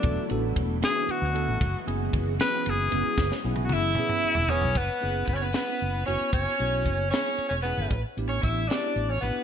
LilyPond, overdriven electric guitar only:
\new Staff \with { instrumentName = "Overdriven electric guitar" } { \time 6/8 \key fis \minor \tempo 4. = 76 r2. | r2. | r4 e''4. cis''8 | b'4 b'32 cis''32 b'16 b'4 cis''8 |
cis''4. cis''8. cis''16 b'8~ | b'16 r8 cis''16 e''8 d''8. cis''16 b'8 | }